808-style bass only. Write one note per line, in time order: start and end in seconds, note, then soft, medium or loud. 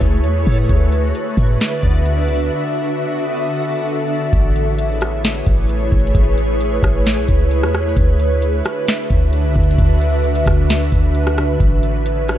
0.01 0.25 C#2 loud
0.24 0.45 E2 loud
0.47 0.68 A2 loud
0.69 1.13 D2 loud
1.37 1.59 A2 loud
1.83 2.30 D2 loud
2.28 2.41 C#2 loud
2.40 2.51 D2 medium
4.33 5.43 A1 loud
5.47 5.90 A1 loud
5.92 6.14 A1 loud
6.15 6.80 A1 loud
6.83 7.19 A1 loud
7.17 7.28 B1 medium
7.29 7.64 C#2 loud
7.62 7.95 E2 loud
7.97 8.62 D2 loud
9.10 9.46 D2 loud
9.44 9.55 C#2 loud
9.56 9.78 D2 loud
9.78 10.44 D2 loud
10.46 10.90 D2 loud
10.92 11.58 D2 loud
11.60 12.38 A1 loud